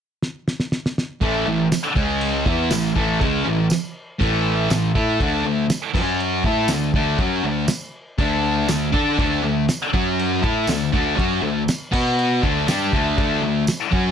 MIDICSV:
0, 0, Header, 1, 4, 480
1, 0, Start_track
1, 0, Tempo, 497925
1, 1180, Time_signature, 4, 2, 24, 8
1, 13606, End_track
2, 0, Start_track
2, 0, Title_t, "Distorted electric guitar"
2, 0, Program_c, 0, 30
2, 1169, Note_on_c, 0, 45, 93
2, 1177, Note_on_c, 0, 52, 99
2, 1181, Note_on_c, 0, 57, 99
2, 1397, Note_off_c, 0, 45, 0
2, 1402, Note_off_c, 0, 52, 0
2, 1409, Note_on_c, 0, 45, 60
2, 1413, Note_off_c, 0, 57, 0
2, 1413, Note_on_c, 0, 52, 77
2, 1606, Note_off_c, 0, 45, 0
2, 1608, Note_off_c, 0, 52, 0
2, 1883, Note_on_c, 0, 49, 92
2, 1888, Note_on_c, 0, 56, 101
2, 1892, Note_on_c, 0, 61, 104
2, 2364, Note_off_c, 0, 49, 0
2, 2366, Note_off_c, 0, 56, 0
2, 2368, Note_off_c, 0, 61, 0
2, 2369, Note_on_c, 0, 52, 89
2, 2378, Note_on_c, 0, 59, 102
2, 2381, Note_on_c, 0, 64, 105
2, 2601, Note_off_c, 0, 52, 0
2, 2605, Note_on_c, 0, 45, 67
2, 2609, Note_off_c, 0, 59, 0
2, 2612, Note_off_c, 0, 64, 0
2, 2612, Note_on_c, 0, 52, 73
2, 2804, Note_off_c, 0, 45, 0
2, 2807, Note_off_c, 0, 52, 0
2, 2844, Note_on_c, 0, 45, 92
2, 2854, Note_on_c, 0, 57, 105
2, 2855, Note_on_c, 0, 52, 101
2, 3084, Note_off_c, 0, 45, 0
2, 3088, Note_off_c, 0, 57, 0
2, 3089, Note_off_c, 0, 52, 0
2, 3093, Note_on_c, 0, 49, 85
2, 3097, Note_on_c, 0, 56, 92
2, 3106, Note_on_c, 0, 61, 106
2, 3322, Note_off_c, 0, 49, 0
2, 3326, Note_on_c, 0, 45, 65
2, 3327, Note_off_c, 0, 56, 0
2, 3331, Note_on_c, 0, 52, 74
2, 3335, Note_off_c, 0, 61, 0
2, 3523, Note_off_c, 0, 45, 0
2, 3526, Note_off_c, 0, 52, 0
2, 4038, Note_on_c, 0, 45, 95
2, 4050, Note_on_c, 0, 52, 101
2, 4054, Note_on_c, 0, 57, 104
2, 4519, Note_off_c, 0, 45, 0
2, 4519, Note_off_c, 0, 52, 0
2, 4527, Note_off_c, 0, 57, 0
2, 4529, Note_on_c, 0, 45, 61
2, 4531, Note_on_c, 0, 52, 70
2, 4724, Note_off_c, 0, 45, 0
2, 4725, Note_off_c, 0, 52, 0
2, 4774, Note_on_c, 0, 57, 96
2, 4778, Note_on_c, 0, 64, 100
2, 4780, Note_on_c, 0, 69, 110
2, 5007, Note_off_c, 0, 57, 0
2, 5009, Note_off_c, 0, 64, 0
2, 5011, Note_off_c, 0, 69, 0
2, 5012, Note_on_c, 0, 50, 93
2, 5018, Note_on_c, 0, 57, 99
2, 5022, Note_on_c, 0, 62, 111
2, 5233, Note_off_c, 0, 50, 0
2, 5242, Note_off_c, 0, 57, 0
2, 5245, Note_on_c, 0, 50, 66
2, 5251, Note_off_c, 0, 62, 0
2, 5253, Note_on_c, 0, 57, 75
2, 5442, Note_off_c, 0, 50, 0
2, 5446, Note_off_c, 0, 57, 0
2, 5723, Note_on_c, 0, 54, 89
2, 5729, Note_on_c, 0, 61, 96
2, 5740, Note_on_c, 0, 66, 98
2, 6201, Note_off_c, 0, 54, 0
2, 6204, Note_off_c, 0, 61, 0
2, 6210, Note_off_c, 0, 66, 0
2, 6216, Note_on_c, 0, 57, 83
2, 6224, Note_on_c, 0, 64, 91
2, 6228, Note_on_c, 0, 69, 95
2, 6448, Note_off_c, 0, 57, 0
2, 6452, Note_off_c, 0, 64, 0
2, 6454, Note_off_c, 0, 69, 0
2, 6456, Note_on_c, 0, 50, 66
2, 6462, Note_on_c, 0, 57, 74
2, 6647, Note_off_c, 0, 50, 0
2, 6650, Note_off_c, 0, 57, 0
2, 6701, Note_on_c, 0, 50, 101
2, 6707, Note_on_c, 0, 57, 95
2, 6709, Note_on_c, 0, 62, 102
2, 6928, Note_off_c, 0, 50, 0
2, 6931, Note_on_c, 0, 54, 95
2, 6933, Note_off_c, 0, 57, 0
2, 6935, Note_off_c, 0, 62, 0
2, 6938, Note_on_c, 0, 61, 100
2, 6945, Note_on_c, 0, 66, 104
2, 7166, Note_off_c, 0, 54, 0
2, 7169, Note_off_c, 0, 61, 0
2, 7172, Note_off_c, 0, 66, 0
2, 7175, Note_on_c, 0, 50, 69
2, 7182, Note_on_c, 0, 57, 72
2, 7367, Note_off_c, 0, 50, 0
2, 7370, Note_off_c, 0, 57, 0
2, 7888, Note_on_c, 0, 50, 90
2, 7897, Note_on_c, 0, 57, 98
2, 7908, Note_on_c, 0, 62, 100
2, 8362, Note_off_c, 0, 50, 0
2, 8365, Note_off_c, 0, 57, 0
2, 8373, Note_on_c, 0, 50, 63
2, 8374, Note_off_c, 0, 62, 0
2, 8376, Note_on_c, 0, 57, 73
2, 8566, Note_off_c, 0, 50, 0
2, 8568, Note_off_c, 0, 57, 0
2, 8602, Note_on_c, 0, 62, 99
2, 8612, Note_on_c, 0, 69, 94
2, 8618, Note_on_c, 0, 74, 100
2, 8842, Note_off_c, 0, 62, 0
2, 8846, Note_off_c, 0, 69, 0
2, 8847, Note_on_c, 0, 50, 96
2, 8849, Note_off_c, 0, 74, 0
2, 8852, Note_on_c, 0, 57, 98
2, 8863, Note_on_c, 0, 62, 99
2, 9084, Note_off_c, 0, 50, 0
2, 9086, Note_off_c, 0, 57, 0
2, 9092, Note_off_c, 0, 62, 0
2, 9100, Note_on_c, 0, 50, 62
2, 9102, Note_on_c, 0, 57, 70
2, 9290, Note_off_c, 0, 50, 0
2, 9291, Note_off_c, 0, 57, 0
2, 9574, Note_on_c, 0, 54, 82
2, 9575, Note_on_c, 0, 61, 96
2, 9585, Note_on_c, 0, 66, 99
2, 10045, Note_off_c, 0, 61, 0
2, 10049, Note_off_c, 0, 54, 0
2, 10049, Note_on_c, 0, 57, 89
2, 10053, Note_off_c, 0, 66, 0
2, 10057, Note_on_c, 0, 64, 104
2, 10064, Note_on_c, 0, 69, 98
2, 10286, Note_off_c, 0, 57, 0
2, 10290, Note_off_c, 0, 64, 0
2, 10294, Note_off_c, 0, 69, 0
2, 10295, Note_on_c, 0, 50, 69
2, 10299, Note_on_c, 0, 57, 71
2, 10488, Note_off_c, 0, 50, 0
2, 10490, Note_off_c, 0, 57, 0
2, 10529, Note_on_c, 0, 50, 102
2, 10535, Note_on_c, 0, 57, 94
2, 10540, Note_on_c, 0, 62, 100
2, 10758, Note_off_c, 0, 50, 0
2, 10762, Note_on_c, 0, 54, 92
2, 10764, Note_off_c, 0, 57, 0
2, 10768, Note_on_c, 0, 61, 94
2, 10772, Note_off_c, 0, 62, 0
2, 10777, Note_on_c, 0, 66, 97
2, 11003, Note_off_c, 0, 54, 0
2, 11006, Note_off_c, 0, 61, 0
2, 11011, Note_off_c, 0, 66, 0
2, 11011, Note_on_c, 0, 50, 65
2, 11013, Note_on_c, 0, 57, 75
2, 11207, Note_off_c, 0, 50, 0
2, 11208, Note_off_c, 0, 57, 0
2, 11487, Note_on_c, 0, 59, 93
2, 11494, Note_on_c, 0, 66, 101
2, 11503, Note_on_c, 0, 71, 103
2, 11967, Note_off_c, 0, 59, 0
2, 11970, Note_off_c, 0, 66, 0
2, 11975, Note_off_c, 0, 71, 0
2, 11977, Note_on_c, 0, 50, 99
2, 11981, Note_on_c, 0, 57, 98
2, 11991, Note_on_c, 0, 62, 112
2, 12212, Note_off_c, 0, 50, 0
2, 12214, Note_off_c, 0, 57, 0
2, 12217, Note_off_c, 0, 62, 0
2, 12219, Note_on_c, 0, 55, 89
2, 12228, Note_on_c, 0, 62, 98
2, 12234, Note_on_c, 0, 67, 113
2, 12453, Note_off_c, 0, 55, 0
2, 12458, Note_off_c, 0, 62, 0
2, 12461, Note_off_c, 0, 67, 0
2, 12463, Note_on_c, 0, 50, 94
2, 12470, Note_on_c, 0, 57, 93
2, 12472, Note_on_c, 0, 62, 102
2, 12685, Note_off_c, 0, 50, 0
2, 12694, Note_off_c, 0, 57, 0
2, 12696, Note_off_c, 0, 62, 0
2, 12697, Note_on_c, 0, 50, 101
2, 12705, Note_on_c, 0, 57, 99
2, 12707, Note_on_c, 0, 62, 109
2, 12933, Note_off_c, 0, 50, 0
2, 12937, Note_off_c, 0, 57, 0
2, 12938, Note_off_c, 0, 62, 0
2, 12943, Note_on_c, 0, 50, 64
2, 12953, Note_on_c, 0, 57, 73
2, 13136, Note_off_c, 0, 50, 0
2, 13140, Note_off_c, 0, 57, 0
2, 13416, Note_on_c, 0, 54, 89
2, 13427, Note_on_c, 0, 61, 106
2, 13430, Note_on_c, 0, 66, 104
2, 13606, Note_off_c, 0, 54, 0
2, 13606, Note_off_c, 0, 61, 0
2, 13606, Note_off_c, 0, 66, 0
2, 13606, End_track
3, 0, Start_track
3, 0, Title_t, "Picked electric bass"
3, 0, Program_c, 1, 34
3, 1167, Note_on_c, 1, 33, 100
3, 1396, Note_off_c, 1, 33, 0
3, 1407, Note_on_c, 1, 33, 83
3, 1636, Note_off_c, 1, 33, 0
3, 1887, Note_on_c, 1, 37, 95
3, 2339, Note_off_c, 1, 37, 0
3, 2370, Note_on_c, 1, 40, 93
3, 2597, Note_off_c, 1, 40, 0
3, 2608, Note_on_c, 1, 33, 81
3, 2836, Note_off_c, 1, 33, 0
3, 2849, Note_on_c, 1, 33, 93
3, 3076, Note_off_c, 1, 33, 0
3, 3095, Note_on_c, 1, 37, 96
3, 3319, Note_off_c, 1, 37, 0
3, 3330, Note_on_c, 1, 33, 83
3, 3556, Note_off_c, 1, 33, 0
3, 4054, Note_on_c, 1, 33, 96
3, 4501, Note_off_c, 1, 33, 0
3, 4534, Note_on_c, 1, 33, 80
3, 4758, Note_off_c, 1, 33, 0
3, 4774, Note_on_c, 1, 45, 99
3, 4998, Note_off_c, 1, 45, 0
3, 5014, Note_on_c, 1, 38, 94
3, 5238, Note_off_c, 1, 38, 0
3, 5256, Note_on_c, 1, 38, 81
3, 5479, Note_off_c, 1, 38, 0
3, 5730, Note_on_c, 1, 42, 91
3, 6178, Note_off_c, 1, 42, 0
3, 6214, Note_on_c, 1, 45, 94
3, 6437, Note_off_c, 1, 45, 0
3, 6445, Note_on_c, 1, 38, 80
3, 6673, Note_off_c, 1, 38, 0
3, 6686, Note_on_c, 1, 38, 94
3, 6913, Note_off_c, 1, 38, 0
3, 6925, Note_on_c, 1, 42, 102
3, 7153, Note_off_c, 1, 42, 0
3, 7170, Note_on_c, 1, 38, 76
3, 7395, Note_off_c, 1, 38, 0
3, 7887, Note_on_c, 1, 38, 87
3, 8337, Note_off_c, 1, 38, 0
3, 8363, Note_on_c, 1, 38, 78
3, 8592, Note_off_c, 1, 38, 0
3, 8617, Note_on_c, 1, 50, 91
3, 8840, Note_off_c, 1, 50, 0
3, 8848, Note_on_c, 1, 38, 94
3, 9075, Note_off_c, 1, 38, 0
3, 9086, Note_on_c, 1, 38, 77
3, 9314, Note_off_c, 1, 38, 0
3, 9581, Note_on_c, 1, 42, 89
3, 10026, Note_off_c, 1, 42, 0
3, 10058, Note_on_c, 1, 45, 94
3, 10281, Note_off_c, 1, 45, 0
3, 10285, Note_on_c, 1, 38, 82
3, 10514, Note_off_c, 1, 38, 0
3, 10544, Note_on_c, 1, 38, 92
3, 10764, Note_off_c, 1, 38, 0
3, 10781, Note_on_c, 1, 42, 97
3, 11003, Note_off_c, 1, 42, 0
3, 11010, Note_on_c, 1, 38, 84
3, 11237, Note_off_c, 1, 38, 0
3, 11508, Note_on_c, 1, 47, 97
3, 11952, Note_off_c, 1, 47, 0
3, 11986, Note_on_c, 1, 38, 100
3, 12207, Note_off_c, 1, 38, 0
3, 12216, Note_on_c, 1, 43, 96
3, 12442, Note_off_c, 1, 43, 0
3, 12463, Note_on_c, 1, 38, 100
3, 12686, Note_off_c, 1, 38, 0
3, 12705, Note_on_c, 1, 38, 100
3, 12928, Note_off_c, 1, 38, 0
3, 12937, Note_on_c, 1, 38, 85
3, 13163, Note_off_c, 1, 38, 0
3, 13423, Note_on_c, 1, 42, 96
3, 13606, Note_off_c, 1, 42, 0
3, 13606, End_track
4, 0, Start_track
4, 0, Title_t, "Drums"
4, 217, Note_on_c, 9, 38, 71
4, 313, Note_off_c, 9, 38, 0
4, 459, Note_on_c, 9, 38, 81
4, 556, Note_off_c, 9, 38, 0
4, 576, Note_on_c, 9, 38, 84
4, 672, Note_off_c, 9, 38, 0
4, 695, Note_on_c, 9, 38, 92
4, 791, Note_off_c, 9, 38, 0
4, 828, Note_on_c, 9, 38, 93
4, 924, Note_off_c, 9, 38, 0
4, 946, Note_on_c, 9, 38, 97
4, 1042, Note_off_c, 9, 38, 0
4, 1171, Note_on_c, 9, 36, 106
4, 1172, Note_on_c, 9, 49, 61
4, 1267, Note_off_c, 9, 36, 0
4, 1268, Note_off_c, 9, 49, 0
4, 1655, Note_on_c, 9, 49, 63
4, 1658, Note_on_c, 9, 54, 95
4, 1659, Note_on_c, 9, 38, 119
4, 1751, Note_off_c, 9, 49, 0
4, 1754, Note_off_c, 9, 54, 0
4, 1756, Note_off_c, 9, 38, 0
4, 1892, Note_on_c, 9, 36, 113
4, 1989, Note_off_c, 9, 36, 0
4, 2131, Note_on_c, 9, 49, 70
4, 2227, Note_off_c, 9, 49, 0
4, 2373, Note_on_c, 9, 36, 107
4, 2469, Note_off_c, 9, 36, 0
4, 2606, Note_on_c, 9, 49, 67
4, 2610, Note_on_c, 9, 54, 94
4, 2611, Note_on_c, 9, 38, 116
4, 2702, Note_off_c, 9, 49, 0
4, 2706, Note_off_c, 9, 54, 0
4, 2707, Note_off_c, 9, 38, 0
4, 2857, Note_on_c, 9, 36, 105
4, 2953, Note_off_c, 9, 36, 0
4, 3096, Note_on_c, 9, 36, 102
4, 3098, Note_on_c, 9, 49, 61
4, 3193, Note_off_c, 9, 36, 0
4, 3194, Note_off_c, 9, 49, 0
4, 3566, Note_on_c, 9, 54, 106
4, 3577, Note_on_c, 9, 49, 61
4, 3581, Note_on_c, 9, 38, 110
4, 3662, Note_off_c, 9, 54, 0
4, 3673, Note_off_c, 9, 49, 0
4, 3678, Note_off_c, 9, 38, 0
4, 4058, Note_on_c, 9, 36, 108
4, 4061, Note_on_c, 9, 49, 59
4, 4154, Note_off_c, 9, 36, 0
4, 4157, Note_off_c, 9, 49, 0
4, 4533, Note_on_c, 9, 54, 90
4, 4539, Note_on_c, 9, 49, 62
4, 4544, Note_on_c, 9, 38, 118
4, 4629, Note_off_c, 9, 54, 0
4, 4635, Note_off_c, 9, 49, 0
4, 4640, Note_off_c, 9, 38, 0
4, 4778, Note_on_c, 9, 36, 105
4, 4874, Note_off_c, 9, 36, 0
4, 5018, Note_on_c, 9, 36, 105
4, 5019, Note_on_c, 9, 49, 62
4, 5114, Note_off_c, 9, 36, 0
4, 5116, Note_off_c, 9, 49, 0
4, 5491, Note_on_c, 9, 49, 62
4, 5494, Note_on_c, 9, 54, 106
4, 5496, Note_on_c, 9, 38, 119
4, 5587, Note_off_c, 9, 49, 0
4, 5590, Note_off_c, 9, 54, 0
4, 5592, Note_off_c, 9, 38, 0
4, 5733, Note_on_c, 9, 36, 112
4, 5737, Note_on_c, 9, 49, 102
4, 5830, Note_off_c, 9, 36, 0
4, 5833, Note_off_c, 9, 49, 0
4, 5979, Note_on_c, 9, 49, 65
4, 6076, Note_off_c, 9, 49, 0
4, 6210, Note_on_c, 9, 36, 111
4, 6307, Note_off_c, 9, 36, 0
4, 6439, Note_on_c, 9, 54, 107
4, 6442, Note_on_c, 9, 49, 68
4, 6447, Note_on_c, 9, 38, 119
4, 6536, Note_off_c, 9, 54, 0
4, 6538, Note_off_c, 9, 49, 0
4, 6543, Note_off_c, 9, 38, 0
4, 6689, Note_on_c, 9, 36, 111
4, 6786, Note_off_c, 9, 36, 0
4, 6928, Note_on_c, 9, 36, 110
4, 6928, Note_on_c, 9, 49, 68
4, 7024, Note_off_c, 9, 49, 0
4, 7025, Note_off_c, 9, 36, 0
4, 7400, Note_on_c, 9, 49, 63
4, 7401, Note_on_c, 9, 54, 108
4, 7405, Note_on_c, 9, 38, 113
4, 7497, Note_off_c, 9, 49, 0
4, 7498, Note_off_c, 9, 54, 0
4, 7502, Note_off_c, 9, 38, 0
4, 7891, Note_on_c, 9, 36, 104
4, 7892, Note_on_c, 9, 49, 60
4, 7988, Note_off_c, 9, 36, 0
4, 7988, Note_off_c, 9, 49, 0
4, 8372, Note_on_c, 9, 54, 91
4, 8373, Note_on_c, 9, 49, 62
4, 8378, Note_on_c, 9, 38, 112
4, 8469, Note_off_c, 9, 49, 0
4, 8469, Note_off_c, 9, 54, 0
4, 8474, Note_off_c, 9, 38, 0
4, 8617, Note_on_c, 9, 36, 110
4, 8714, Note_off_c, 9, 36, 0
4, 8857, Note_on_c, 9, 36, 106
4, 8862, Note_on_c, 9, 49, 59
4, 8953, Note_off_c, 9, 36, 0
4, 8958, Note_off_c, 9, 49, 0
4, 9335, Note_on_c, 9, 49, 59
4, 9340, Note_on_c, 9, 38, 115
4, 9345, Note_on_c, 9, 54, 95
4, 9431, Note_off_c, 9, 49, 0
4, 9436, Note_off_c, 9, 38, 0
4, 9441, Note_off_c, 9, 54, 0
4, 9582, Note_on_c, 9, 36, 111
4, 9678, Note_off_c, 9, 36, 0
4, 9827, Note_on_c, 9, 49, 62
4, 9923, Note_off_c, 9, 49, 0
4, 10063, Note_on_c, 9, 36, 110
4, 10160, Note_off_c, 9, 36, 0
4, 10289, Note_on_c, 9, 54, 83
4, 10303, Note_on_c, 9, 49, 68
4, 10308, Note_on_c, 9, 38, 121
4, 10385, Note_off_c, 9, 54, 0
4, 10400, Note_off_c, 9, 49, 0
4, 10404, Note_off_c, 9, 38, 0
4, 10544, Note_on_c, 9, 36, 105
4, 10641, Note_off_c, 9, 36, 0
4, 10784, Note_on_c, 9, 36, 103
4, 10790, Note_on_c, 9, 49, 65
4, 10880, Note_off_c, 9, 36, 0
4, 10887, Note_off_c, 9, 49, 0
4, 11262, Note_on_c, 9, 54, 92
4, 11263, Note_on_c, 9, 49, 67
4, 11268, Note_on_c, 9, 38, 117
4, 11358, Note_off_c, 9, 54, 0
4, 11359, Note_off_c, 9, 49, 0
4, 11364, Note_off_c, 9, 38, 0
4, 11504, Note_on_c, 9, 49, 101
4, 11506, Note_on_c, 9, 36, 109
4, 11600, Note_off_c, 9, 49, 0
4, 11602, Note_off_c, 9, 36, 0
4, 11748, Note_on_c, 9, 49, 60
4, 11844, Note_off_c, 9, 49, 0
4, 11986, Note_on_c, 9, 36, 107
4, 12083, Note_off_c, 9, 36, 0
4, 12225, Note_on_c, 9, 54, 94
4, 12226, Note_on_c, 9, 49, 64
4, 12231, Note_on_c, 9, 38, 116
4, 12321, Note_off_c, 9, 54, 0
4, 12322, Note_off_c, 9, 49, 0
4, 12327, Note_off_c, 9, 38, 0
4, 12466, Note_on_c, 9, 36, 113
4, 12562, Note_off_c, 9, 36, 0
4, 12705, Note_on_c, 9, 49, 58
4, 12707, Note_on_c, 9, 36, 108
4, 12802, Note_off_c, 9, 49, 0
4, 12803, Note_off_c, 9, 36, 0
4, 13180, Note_on_c, 9, 54, 105
4, 13186, Note_on_c, 9, 49, 58
4, 13191, Note_on_c, 9, 38, 113
4, 13277, Note_off_c, 9, 54, 0
4, 13283, Note_off_c, 9, 49, 0
4, 13288, Note_off_c, 9, 38, 0
4, 13429, Note_on_c, 9, 36, 111
4, 13526, Note_off_c, 9, 36, 0
4, 13606, End_track
0, 0, End_of_file